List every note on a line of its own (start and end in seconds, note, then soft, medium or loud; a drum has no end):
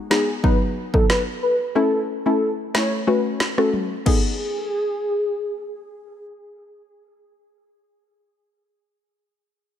0.10 0.24 G#3 medium
0.10 0.24 B3 medium
0.10 0.24 D#4 medium
0.10 0.35 G#4 medium
0.10 snare loud
0.43 0.90 F#3 medium
0.43 0.90 B3 medium
0.43 0.90 D#4 loud
0.43 0.57 B4 medium
0.43 kick medium
0.94 1.06 F#3 medium
0.94 1.06 B3 medium
0.94 1.06 D#4 medium
0.94 1.06 A4 medium
0.94 kick loud
1.09 1.23 B4 medium
1.09 snare loud
1.42 1.56 B4 medium
1.75 2.22 A3 medium
1.75 2.22 C#4 medium
1.75 2.22 E4 loud
1.75 2.00 A4 loud
2.26 2.38 A3 medium
2.26 2.38 C#4 medium
2.26 2.38 E4 medium
2.26 2.51 A4 medium
2.74 2.88 A3 medium
2.74 2.88 C#4 medium
2.74 2.88 E4 medium
2.74 2.99 C#5 medium
2.74 snare loud
3.07 3.53 A3 medium
3.07 3.54 C#4 medium
3.07 3.54 F#4 loud
3.07 3.21 B4 medium
3.40 snare loud
3.58 3.69 A3 medium
3.58 3.70 C#4 medium
3.58 3.70 F#4 medium
3.58 3.69 A4 medium
3.58 cross-stick medium
3.73 high tom medium
4.06 7.67 B3 medium
4.06 7.67 D#4 medium
4.06 6.33 G#4 medium
4.06 7.68 G#4 medium
4.06 kick medium
4.06 crash medium